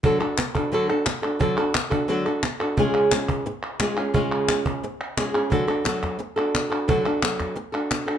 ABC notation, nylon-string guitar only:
X:1
M:4/4
L:1/8
Q:1/4=175
K:none
V:1 name="Nylon-string guitar"
[D,^F,D^FA] [DFA] z [DFA] [D,F,DFA] [DFA] z [DFA] | [D,^F,D^FA] [DFA] z [DFA] [D,F,DFA] [DFA] z [DFA] | [^C,^G,^C^E^G]2 [CEG]2 z2 [G,CEG] [CEG] | [^C,^G,^C^E^G]2 [CEG]2 z2 [G,CEG] [CEG] |
[D,^F,D^FA] [DFA] [F,DFA]2 z [DFA]2 [DFA] | [D,^F,D^FA] [DFA] [F,DFA]2 z [DFA]2 [DFA] |]